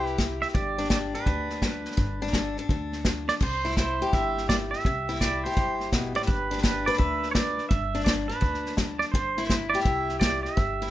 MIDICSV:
0, 0, Header, 1, 5, 480
1, 0, Start_track
1, 0, Key_signature, 0, "major"
1, 0, Tempo, 358209
1, 729, Time_signature, 4, 2, 24, 8
1, 14611, End_track
2, 0, Start_track
2, 0, Title_t, "Pedal steel guitar"
2, 0, Program_c, 0, 26
2, 0, Note_on_c, 0, 72, 85
2, 64, Note_off_c, 0, 72, 0
2, 64, Note_on_c, 0, 71, 85
2, 223, Note_off_c, 0, 71, 0
2, 560, Note_on_c, 0, 76, 80
2, 627, Note_off_c, 0, 76, 0
2, 727, Note_on_c, 0, 74, 89
2, 1201, Note_off_c, 0, 74, 0
2, 1217, Note_on_c, 0, 74, 79
2, 1300, Note_off_c, 0, 74, 0
2, 1537, Note_on_c, 0, 71, 70
2, 3171, Note_off_c, 0, 71, 0
2, 3171, Note_on_c, 0, 69, 70
2, 4048, Note_off_c, 0, 69, 0
2, 4406, Note_on_c, 0, 74, 88
2, 4473, Note_off_c, 0, 74, 0
2, 4596, Note_on_c, 0, 72, 88
2, 5052, Note_off_c, 0, 72, 0
2, 5068, Note_on_c, 0, 72, 88
2, 5550, Note_on_c, 0, 76, 97
2, 5556, Note_off_c, 0, 72, 0
2, 6012, Note_off_c, 0, 76, 0
2, 6017, Note_on_c, 0, 74, 89
2, 6101, Note_off_c, 0, 74, 0
2, 6310, Note_on_c, 0, 76, 95
2, 6974, Note_off_c, 0, 76, 0
2, 6979, Note_on_c, 0, 74, 87
2, 7286, Note_on_c, 0, 72, 84
2, 7298, Note_off_c, 0, 74, 0
2, 7892, Note_off_c, 0, 72, 0
2, 8257, Note_on_c, 0, 74, 91
2, 8324, Note_off_c, 0, 74, 0
2, 8403, Note_on_c, 0, 71, 85
2, 8863, Note_off_c, 0, 71, 0
2, 8879, Note_on_c, 0, 71, 80
2, 9196, Note_on_c, 0, 74, 86
2, 9208, Note_off_c, 0, 71, 0
2, 9359, Note_off_c, 0, 74, 0
2, 9365, Note_on_c, 0, 76, 93
2, 9756, Note_off_c, 0, 76, 0
2, 9800, Note_on_c, 0, 73, 65
2, 9840, Note_off_c, 0, 73, 0
2, 9846, Note_on_c, 0, 74, 92
2, 10298, Note_off_c, 0, 74, 0
2, 10303, Note_on_c, 0, 76, 91
2, 10766, Note_off_c, 0, 76, 0
2, 10780, Note_on_c, 0, 74, 88
2, 10869, Note_off_c, 0, 74, 0
2, 11096, Note_on_c, 0, 71, 81
2, 11715, Note_off_c, 0, 71, 0
2, 12052, Note_on_c, 0, 74, 85
2, 12119, Note_off_c, 0, 74, 0
2, 12216, Note_on_c, 0, 72, 87
2, 12674, Note_off_c, 0, 72, 0
2, 12690, Note_on_c, 0, 72, 79
2, 12780, Note_off_c, 0, 72, 0
2, 12993, Note_on_c, 0, 74, 84
2, 13163, Note_off_c, 0, 74, 0
2, 13168, Note_on_c, 0, 76, 88
2, 13657, Note_off_c, 0, 76, 0
2, 13663, Note_on_c, 0, 74, 86
2, 13971, Note_off_c, 0, 74, 0
2, 13976, Note_on_c, 0, 76, 92
2, 14611, Note_off_c, 0, 76, 0
2, 14611, End_track
3, 0, Start_track
3, 0, Title_t, "Steel-string acoustic guitar"
3, 0, Program_c, 1, 25
3, 0, Note_on_c, 1, 43, 64
3, 0, Note_on_c, 1, 64, 45
3, 0, Note_on_c, 1, 67, 61
3, 216, Note_off_c, 1, 43, 0
3, 245, Note_on_c, 1, 55, 63
3, 693, Note_off_c, 1, 55, 0
3, 732, Note_off_c, 1, 64, 0
3, 734, Note_on_c, 1, 43, 70
3, 1052, Note_on_c, 1, 62, 56
3, 1177, Note_off_c, 1, 43, 0
3, 1207, Note_on_c, 1, 55, 58
3, 1537, Note_off_c, 1, 62, 0
3, 1542, Note_on_c, 1, 62, 53
3, 1654, Note_off_c, 1, 55, 0
3, 1698, Note_on_c, 1, 50, 62
3, 2140, Note_off_c, 1, 50, 0
3, 2177, Note_on_c, 1, 55, 65
3, 2620, Note_off_c, 1, 55, 0
3, 2642, Note_on_c, 1, 43, 66
3, 2959, Note_off_c, 1, 62, 0
3, 2975, Note_on_c, 1, 62, 55
3, 3093, Note_off_c, 1, 43, 0
3, 3143, Note_on_c, 1, 55, 55
3, 3448, Note_off_c, 1, 62, 0
3, 3469, Note_on_c, 1, 62, 52
3, 3584, Note_off_c, 1, 55, 0
3, 3624, Note_on_c, 1, 50, 58
3, 4065, Note_off_c, 1, 50, 0
3, 4099, Note_on_c, 1, 55, 61
3, 4299, Note_off_c, 1, 67, 0
3, 4543, Note_off_c, 1, 55, 0
3, 4587, Note_off_c, 1, 62, 0
3, 4589, Note_on_c, 1, 48, 68
3, 4888, Note_on_c, 1, 64, 54
3, 5028, Note_off_c, 1, 48, 0
3, 5077, Note_on_c, 1, 55, 56
3, 5386, Note_on_c, 1, 67, 62
3, 5512, Note_off_c, 1, 55, 0
3, 5539, Note_on_c, 1, 43, 58
3, 5984, Note_off_c, 1, 43, 0
3, 6025, Note_on_c, 1, 55, 65
3, 6467, Note_off_c, 1, 55, 0
3, 6478, Note_off_c, 1, 64, 0
3, 6512, Note_on_c, 1, 48, 63
3, 6819, Note_on_c, 1, 64, 54
3, 6951, Note_off_c, 1, 48, 0
3, 6994, Note_on_c, 1, 55, 63
3, 7313, Note_off_c, 1, 67, 0
3, 7319, Note_on_c, 1, 67, 60
3, 7432, Note_off_c, 1, 55, 0
3, 7460, Note_on_c, 1, 43, 59
3, 7905, Note_off_c, 1, 43, 0
3, 7941, Note_on_c, 1, 47, 63
3, 8237, Note_off_c, 1, 47, 0
3, 8243, Note_on_c, 1, 45, 58
3, 8401, Note_off_c, 1, 45, 0
3, 8404, Note_off_c, 1, 64, 0
3, 8406, Note_on_c, 1, 43, 67
3, 8724, Note_on_c, 1, 62, 57
3, 8859, Note_off_c, 1, 43, 0
3, 8889, Note_on_c, 1, 55, 59
3, 9207, Note_off_c, 1, 67, 0
3, 9212, Note_on_c, 1, 71, 64
3, 9340, Note_off_c, 1, 55, 0
3, 9358, Note_on_c, 1, 50, 60
3, 9815, Note_off_c, 1, 50, 0
3, 9852, Note_on_c, 1, 55, 63
3, 10302, Note_off_c, 1, 55, 0
3, 10320, Note_off_c, 1, 71, 0
3, 10328, Note_on_c, 1, 43, 69
3, 10633, Note_off_c, 1, 62, 0
3, 10649, Note_on_c, 1, 62, 56
3, 10779, Note_off_c, 1, 43, 0
3, 10801, Note_on_c, 1, 55, 59
3, 11098, Note_off_c, 1, 62, 0
3, 11114, Note_on_c, 1, 62, 56
3, 11256, Note_off_c, 1, 55, 0
3, 11268, Note_on_c, 1, 50, 63
3, 11729, Note_off_c, 1, 50, 0
3, 11764, Note_on_c, 1, 55, 64
3, 12216, Note_off_c, 1, 55, 0
3, 12250, Note_off_c, 1, 62, 0
3, 12258, Note_on_c, 1, 43, 70
3, 12568, Note_on_c, 1, 64, 55
3, 12703, Note_off_c, 1, 43, 0
3, 12732, Note_on_c, 1, 55, 56
3, 13062, Note_on_c, 1, 67, 62
3, 13180, Note_off_c, 1, 55, 0
3, 13205, Note_on_c, 1, 43, 61
3, 13655, Note_off_c, 1, 43, 0
3, 13679, Note_on_c, 1, 55, 61
3, 14132, Note_off_c, 1, 55, 0
3, 14154, Note_off_c, 1, 64, 0
3, 14163, Note_on_c, 1, 43, 68
3, 14498, Note_on_c, 1, 64, 59
3, 14611, Note_off_c, 1, 43, 0
3, 14611, Note_off_c, 1, 64, 0
3, 14611, Note_off_c, 1, 67, 0
3, 14611, End_track
4, 0, Start_track
4, 0, Title_t, "Upright bass"
4, 0, Program_c, 2, 32
4, 0, Note_on_c, 2, 36, 81
4, 553, Note_off_c, 2, 36, 0
4, 736, Note_on_c, 2, 31, 86
4, 1519, Note_off_c, 2, 31, 0
4, 1696, Note_on_c, 2, 38, 81
4, 2480, Note_off_c, 2, 38, 0
4, 2652, Note_on_c, 2, 31, 88
4, 3439, Note_off_c, 2, 31, 0
4, 3611, Note_on_c, 2, 38, 79
4, 4398, Note_off_c, 2, 38, 0
4, 4569, Note_on_c, 2, 36, 80
4, 5358, Note_off_c, 2, 36, 0
4, 5538, Note_on_c, 2, 31, 82
4, 6324, Note_off_c, 2, 31, 0
4, 6501, Note_on_c, 2, 36, 83
4, 7286, Note_off_c, 2, 36, 0
4, 7465, Note_on_c, 2, 31, 77
4, 8249, Note_off_c, 2, 31, 0
4, 8424, Note_on_c, 2, 31, 82
4, 9208, Note_off_c, 2, 31, 0
4, 9373, Note_on_c, 2, 38, 80
4, 10161, Note_off_c, 2, 38, 0
4, 10333, Note_on_c, 2, 31, 86
4, 11121, Note_off_c, 2, 31, 0
4, 11289, Note_on_c, 2, 38, 79
4, 12078, Note_off_c, 2, 38, 0
4, 12247, Note_on_c, 2, 31, 89
4, 13036, Note_off_c, 2, 31, 0
4, 13207, Note_on_c, 2, 36, 78
4, 13994, Note_off_c, 2, 36, 0
4, 14171, Note_on_c, 2, 31, 83
4, 14611, Note_off_c, 2, 31, 0
4, 14611, End_track
5, 0, Start_track
5, 0, Title_t, "Drums"
5, 79, Note_on_c, 9, 38, 30
5, 213, Note_off_c, 9, 38, 0
5, 248, Note_on_c, 9, 36, 83
5, 252, Note_on_c, 9, 38, 103
5, 252, Note_on_c, 9, 44, 78
5, 382, Note_off_c, 9, 36, 0
5, 386, Note_off_c, 9, 38, 0
5, 386, Note_off_c, 9, 44, 0
5, 563, Note_on_c, 9, 38, 32
5, 646, Note_off_c, 9, 38, 0
5, 646, Note_on_c, 9, 38, 28
5, 733, Note_on_c, 9, 36, 102
5, 736, Note_off_c, 9, 38, 0
5, 736, Note_on_c, 9, 38, 34
5, 867, Note_off_c, 9, 36, 0
5, 870, Note_off_c, 9, 38, 0
5, 1041, Note_on_c, 9, 38, 33
5, 1126, Note_off_c, 9, 38, 0
5, 1126, Note_on_c, 9, 38, 32
5, 1207, Note_off_c, 9, 38, 0
5, 1207, Note_on_c, 9, 38, 99
5, 1207, Note_on_c, 9, 44, 80
5, 1210, Note_on_c, 9, 36, 77
5, 1341, Note_off_c, 9, 38, 0
5, 1341, Note_off_c, 9, 44, 0
5, 1344, Note_off_c, 9, 36, 0
5, 1526, Note_on_c, 9, 38, 32
5, 1660, Note_off_c, 9, 38, 0
5, 1693, Note_on_c, 9, 36, 100
5, 1693, Note_on_c, 9, 38, 32
5, 1827, Note_off_c, 9, 36, 0
5, 1827, Note_off_c, 9, 38, 0
5, 2005, Note_on_c, 9, 38, 29
5, 2139, Note_off_c, 9, 38, 0
5, 2170, Note_on_c, 9, 36, 80
5, 2171, Note_on_c, 9, 38, 103
5, 2171, Note_on_c, 9, 44, 77
5, 2304, Note_off_c, 9, 36, 0
5, 2305, Note_off_c, 9, 38, 0
5, 2305, Note_off_c, 9, 44, 0
5, 2477, Note_on_c, 9, 38, 33
5, 2563, Note_off_c, 9, 38, 0
5, 2563, Note_on_c, 9, 38, 30
5, 2646, Note_off_c, 9, 38, 0
5, 2646, Note_on_c, 9, 38, 34
5, 2650, Note_on_c, 9, 36, 102
5, 2780, Note_off_c, 9, 38, 0
5, 2784, Note_off_c, 9, 36, 0
5, 2959, Note_on_c, 9, 38, 32
5, 3043, Note_off_c, 9, 38, 0
5, 3043, Note_on_c, 9, 38, 30
5, 3124, Note_off_c, 9, 38, 0
5, 3124, Note_on_c, 9, 38, 97
5, 3124, Note_on_c, 9, 44, 80
5, 3129, Note_on_c, 9, 36, 80
5, 3258, Note_off_c, 9, 38, 0
5, 3258, Note_off_c, 9, 44, 0
5, 3263, Note_off_c, 9, 36, 0
5, 3440, Note_on_c, 9, 38, 30
5, 3574, Note_off_c, 9, 38, 0
5, 3605, Note_on_c, 9, 38, 33
5, 3608, Note_on_c, 9, 36, 101
5, 3739, Note_off_c, 9, 38, 0
5, 3742, Note_off_c, 9, 36, 0
5, 3917, Note_on_c, 9, 38, 28
5, 4051, Note_off_c, 9, 38, 0
5, 4083, Note_on_c, 9, 38, 99
5, 4083, Note_on_c, 9, 44, 82
5, 4086, Note_on_c, 9, 36, 81
5, 4217, Note_off_c, 9, 38, 0
5, 4217, Note_off_c, 9, 44, 0
5, 4220, Note_off_c, 9, 36, 0
5, 4394, Note_on_c, 9, 38, 50
5, 4528, Note_off_c, 9, 38, 0
5, 4562, Note_on_c, 9, 38, 34
5, 4562, Note_on_c, 9, 49, 93
5, 4568, Note_on_c, 9, 36, 105
5, 4696, Note_off_c, 9, 38, 0
5, 4696, Note_off_c, 9, 49, 0
5, 4702, Note_off_c, 9, 36, 0
5, 4883, Note_on_c, 9, 38, 33
5, 4966, Note_off_c, 9, 38, 0
5, 4966, Note_on_c, 9, 38, 30
5, 5049, Note_off_c, 9, 38, 0
5, 5049, Note_on_c, 9, 38, 99
5, 5049, Note_on_c, 9, 44, 77
5, 5051, Note_on_c, 9, 36, 84
5, 5183, Note_off_c, 9, 38, 0
5, 5183, Note_off_c, 9, 44, 0
5, 5185, Note_off_c, 9, 36, 0
5, 5370, Note_on_c, 9, 38, 34
5, 5504, Note_off_c, 9, 38, 0
5, 5536, Note_on_c, 9, 36, 101
5, 5540, Note_on_c, 9, 38, 34
5, 5670, Note_off_c, 9, 36, 0
5, 5674, Note_off_c, 9, 38, 0
5, 5861, Note_on_c, 9, 38, 32
5, 5995, Note_off_c, 9, 38, 0
5, 6020, Note_on_c, 9, 36, 82
5, 6028, Note_on_c, 9, 38, 106
5, 6028, Note_on_c, 9, 44, 84
5, 6154, Note_off_c, 9, 36, 0
5, 6162, Note_off_c, 9, 38, 0
5, 6162, Note_off_c, 9, 44, 0
5, 6338, Note_on_c, 9, 38, 32
5, 6416, Note_off_c, 9, 38, 0
5, 6416, Note_on_c, 9, 38, 30
5, 6499, Note_on_c, 9, 36, 100
5, 6502, Note_off_c, 9, 38, 0
5, 6502, Note_on_c, 9, 38, 34
5, 6633, Note_off_c, 9, 36, 0
5, 6636, Note_off_c, 9, 38, 0
5, 6814, Note_on_c, 9, 38, 31
5, 6905, Note_off_c, 9, 38, 0
5, 6905, Note_on_c, 9, 38, 30
5, 6981, Note_on_c, 9, 36, 77
5, 6983, Note_off_c, 9, 38, 0
5, 6983, Note_on_c, 9, 38, 99
5, 6983, Note_on_c, 9, 44, 79
5, 7115, Note_off_c, 9, 36, 0
5, 7117, Note_off_c, 9, 38, 0
5, 7117, Note_off_c, 9, 44, 0
5, 7297, Note_on_c, 9, 38, 34
5, 7381, Note_off_c, 9, 38, 0
5, 7381, Note_on_c, 9, 38, 32
5, 7462, Note_on_c, 9, 36, 103
5, 7464, Note_off_c, 9, 38, 0
5, 7464, Note_on_c, 9, 38, 32
5, 7596, Note_off_c, 9, 36, 0
5, 7598, Note_off_c, 9, 38, 0
5, 7774, Note_on_c, 9, 38, 29
5, 7908, Note_off_c, 9, 38, 0
5, 7940, Note_on_c, 9, 36, 82
5, 7941, Note_on_c, 9, 38, 103
5, 7941, Note_on_c, 9, 44, 80
5, 8074, Note_off_c, 9, 36, 0
5, 8075, Note_off_c, 9, 38, 0
5, 8075, Note_off_c, 9, 44, 0
5, 8252, Note_on_c, 9, 38, 33
5, 8334, Note_off_c, 9, 38, 0
5, 8334, Note_on_c, 9, 38, 30
5, 8419, Note_off_c, 9, 38, 0
5, 8419, Note_on_c, 9, 36, 104
5, 8419, Note_on_c, 9, 38, 33
5, 8553, Note_off_c, 9, 36, 0
5, 8553, Note_off_c, 9, 38, 0
5, 8731, Note_on_c, 9, 38, 31
5, 8813, Note_off_c, 9, 38, 0
5, 8813, Note_on_c, 9, 38, 33
5, 8893, Note_off_c, 9, 38, 0
5, 8893, Note_on_c, 9, 38, 100
5, 8893, Note_on_c, 9, 44, 81
5, 8897, Note_on_c, 9, 36, 83
5, 9027, Note_off_c, 9, 38, 0
5, 9027, Note_off_c, 9, 44, 0
5, 9031, Note_off_c, 9, 36, 0
5, 9205, Note_on_c, 9, 38, 35
5, 9290, Note_off_c, 9, 38, 0
5, 9290, Note_on_c, 9, 38, 32
5, 9373, Note_off_c, 9, 38, 0
5, 9373, Note_on_c, 9, 38, 33
5, 9374, Note_on_c, 9, 36, 103
5, 9507, Note_off_c, 9, 38, 0
5, 9508, Note_off_c, 9, 36, 0
5, 9682, Note_on_c, 9, 38, 30
5, 9816, Note_off_c, 9, 38, 0
5, 9846, Note_on_c, 9, 38, 104
5, 9846, Note_on_c, 9, 44, 83
5, 9851, Note_on_c, 9, 36, 80
5, 9980, Note_off_c, 9, 38, 0
5, 9980, Note_off_c, 9, 44, 0
5, 9985, Note_off_c, 9, 36, 0
5, 10159, Note_on_c, 9, 38, 32
5, 10293, Note_off_c, 9, 38, 0
5, 10324, Note_on_c, 9, 38, 33
5, 10328, Note_on_c, 9, 36, 106
5, 10458, Note_off_c, 9, 38, 0
5, 10462, Note_off_c, 9, 36, 0
5, 10636, Note_on_c, 9, 38, 33
5, 10727, Note_off_c, 9, 38, 0
5, 10727, Note_on_c, 9, 38, 31
5, 10810, Note_on_c, 9, 36, 79
5, 10814, Note_off_c, 9, 38, 0
5, 10814, Note_on_c, 9, 38, 106
5, 10814, Note_on_c, 9, 44, 79
5, 10944, Note_off_c, 9, 36, 0
5, 10948, Note_off_c, 9, 38, 0
5, 10948, Note_off_c, 9, 44, 0
5, 11121, Note_on_c, 9, 38, 31
5, 11255, Note_off_c, 9, 38, 0
5, 11285, Note_on_c, 9, 38, 33
5, 11286, Note_on_c, 9, 36, 98
5, 11419, Note_off_c, 9, 38, 0
5, 11420, Note_off_c, 9, 36, 0
5, 11443, Note_on_c, 9, 38, 30
5, 11577, Note_off_c, 9, 38, 0
5, 11599, Note_on_c, 9, 38, 31
5, 11733, Note_off_c, 9, 38, 0
5, 11754, Note_on_c, 9, 38, 102
5, 11754, Note_on_c, 9, 44, 79
5, 11762, Note_on_c, 9, 36, 79
5, 11888, Note_off_c, 9, 38, 0
5, 11888, Note_off_c, 9, 44, 0
5, 11896, Note_off_c, 9, 36, 0
5, 12072, Note_on_c, 9, 38, 32
5, 12206, Note_off_c, 9, 38, 0
5, 12244, Note_on_c, 9, 38, 33
5, 12245, Note_on_c, 9, 36, 98
5, 12378, Note_off_c, 9, 38, 0
5, 12379, Note_off_c, 9, 36, 0
5, 12554, Note_on_c, 9, 38, 31
5, 12645, Note_off_c, 9, 38, 0
5, 12645, Note_on_c, 9, 38, 32
5, 12725, Note_on_c, 9, 36, 80
5, 12728, Note_off_c, 9, 38, 0
5, 12728, Note_on_c, 9, 38, 101
5, 12728, Note_on_c, 9, 44, 85
5, 12859, Note_off_c, 9, 36, 0
5, 12862, Note_off_c, 9, 38, 0
5, 12862, Note_off_c, 9, 44, 0
5, 13037, Note_on_c, 9, 38, 32
5, 13125, Note_off_c, 9, 38, 0
5, 13125, Note_on_c, 9, 38, 30
5, 13202, Note_off_c, 9, 38, 0
5, 13202, Note_on_c, 9, 38, 33
5, 13204, Note_on_c, 9, 36, 105
5, 13336, Note_off_c, 9, 38, 0
5, 13338, Note_off_c, 9, 36, 0
5, 13519, Note_on_c, 9, 38, 31
5, 13653, Note_off_c, 9, 38, 0
5, 13687, Note_on_c, 9, 36, 77
5, 13692, Note_on_c, 9, 38, 105
5, 13692, Note_on_c, 9, 44, 81
5, 13821, Note_off_c, 9, 36, 0
5, 13826, Note_off_c, 9, 38, 0
5, 13826, Note_off_c, 9, 44, 0
5, 14003, Note_on_c, 9, 38, 34
5, 14137, Note_off_c, 9, 38, 0
5, 14169, Note_on_c, 9, 36, 99
5, 14172, Note_on_c, 9, 38, 35
5, 14303, Note_off_c, 9, 36, 0
5, 14306, Note_off_c, 9, 38, 0
5, 14484, Note_on_c, 9, 38, 32
5, 14568, Note_off_c, 9, 38, 0
5, 14568, Note_on_c, 9, 38, 30
5, 14611, Note_off_c, 9, 38, 0
5, 14611, End_track
0, 0, End_of_file